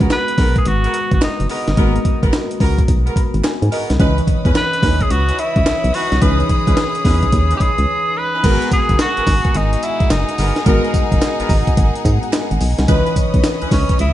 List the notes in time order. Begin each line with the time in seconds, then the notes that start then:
Already playing: G#3 B3 F#4 B4
0.00 C#2 B3 F#4 G#4 A#4, kick, closed hi-hat
0.10 B4, snare, clap, closed hi-hat
0.28 closed hi-hat
0.38 B1 B3 F#4 G#4 A#4, kick, snare, open hi-hat
0.56 G#4, kick, closed hi-hat
0.65 G#1 F#4, closed hi-hat
0.84 B3 F#4 G#4 A#4, closed hi-hat
0.94 closed hi-hat
1.11 G#1 F#4, kick, closed hi-hat
1.22 D#4, snare, clap, closed hi-hat
1.40 F#1, closed hi-hat
1.49 B3 D#4 F#4 G#4 A#4, open hi-hat
1.68 G1, snare, closed hi-hat
1.77 G#1 G#3 A#3 B3 F#4 G#4 A#4, kick, closed hi-hat
1.84 B3
1.96 closed hi-hat
2.05 kick, closed hi-hat
2.22 G#1 B3 F#4 G#4 A#4, kick, closed hi-hat
2.33 snare, clap, closed hi-hat
2.51 closed hi-hat
2.60 C#2 B3 F#4 G#4 A#4, kick, open hi-hat
2.78 kick, closed hi-hat
2.88 B1, kick, closed hi-hat
3.06 B3 F#4 G#4 A#4, closed hi-hat
3.16 B5, kick, closed hi-hat
3.34 G#1, closed hi-hat
3.44 G#5, snare, clap, closed hi-hat
3.62 G#2, closed hi-hat
3.71 B3 F#4 G#4 A#4 D#5, open hi-hat
3.90 C2, snare, closed hi-hat
3.99 C#2 E3 C#4 D#4 E4 B4 C#5 D#5 B5 D#6, kick, closed hi-hat
4.18 closed hi-hat
4.27 kick, closed hi-hat
4.45 E2 C#4 D#4 E4 B4, kick, closed hi-hat
4.55 B4, snare, clap, closed hi-hat
4.73 closed hi-hat
4.82 D#2 C#4 D#4 E4 B4, kick, snare, open hi-hat
5.01 G#4, kick, closed hi-hat
5.10 C#2 F#4, closed hi-hat
5.28 C#4 D#4 E4 B4, closed hi-hat
5.39 E4, closed hi-hat
5.56 C#2, kick, closed hi-hat
5.66 B1, snare, clap, closed hi-hat
5.84 B1, closed hi-hat
5.94 C#4 D#4 E4 F#4 B4, open hi-hat
6.12 C2, snare, closed hi-hat
6.21 C#2 E3 C#4 D#4 E4 G#4 B4, kick, closed hi-hat
6.40 closed hi-hat
6.49 kick, closed hi-hat
6.67 C#2 C#4 D#4 E4 B4, kick, closed hi-hat
6.77 snare, clap, closed hi-hat
6.95 closed hi-hat
7.05 E2 C#4 D#4 E4 B4, kick, snare, open hi-hat
7.23 kick, closed hi-hat
7.32 D#2, kick, closed hi-hat
7.51 C#4 D#4 E4 B4, closed hi-hat
7.57 G4, kick
7.61 G#4, closed hi-hat
7.78 C#2, closed hi-hat
8.17 B4
8.34 C#4 D#4 E4 B4
8.43 G#1 G#3 B3 F#4 G#4 A#4 F#5 G#5 A#5, kick, closed hi-hat, crash, tambourine
8.62 closed hi-hat
8.72 G#4, kick, closed hi-hat, tambourine
8.89 F#1, kick, closed hi-hat
8.99 F#4, snare, clap, closed hi-hat, tambourine
9.17 G#1 B3 F#4 G#4 A#4, closed hi-hat
9.27 G#1, kick, snare, open hi-hat, tambourine
9.45 kick, closed hi-hat
9.55 G#1 D#4, closed hi-hat
9.73 closed hi-hat
9.83 E4, closed hi-hat, tambourine
10.00 kick, closed hi-hat
10.10 F#1 D#4, snare, clap, closed hi-hat, tambourine
10.29 closed hi-hat
10.38 G1 B3 F#4 G#4 A#4, open hi-hat, tambourine
10.56 snare, closed hi-hat
10.65 G#1 G#3 B3 D#4 F#4 G#4 A#4, kick, closed hi-hat, tambourine
10.85 closed hi-hat
10.94 kick, closed hi-hat, tambourine
11.12 F#1, kick, closed hi-hat
11.22 snare, clap, closed hi-hat, tambourine
11.39 G#1 B3 F#4 G#4 A#4, closed hi-hat
11.49 G#1 A#5, kick, open hi-hat, tambourine
11.67 G#5, kick, closed hi-hat
11.77 G#1 F#5, kick, closed hi-hat
11.96 G#5, closed hi-hat
12.05 G#2, kick, closed hi-hat, tambourine
12.23 F#5, closed hi-hat
12.33 D#5, snare, clap, closed hi-hat, tambourine
12.51 G#1, closed hi-hat
12.61 B1, open hi-hat, tambourine
12.78 C2, snare, closed hi-hat
12.88 C#2 E3 C#4 D#4 E4 B4 C#5 D#5 B5 D#6, kick, closed hi-hat, tambourine
13.07 closed hi-hat
13.16 kick, closed hi-hat, tambourine
13.34 B1, kick, closed hi-hat
13.44 snare, clap, closed hi-hat, tambourine
13.61 C#2 C#4 D#4 E4 B4, closed hi-hat
13.71 C#2 C#4, kick, snare, open hi-hat, tambourine
13.89 C#4, kick, closed hi-hat
13.99 C#2 E4, closed hi-hat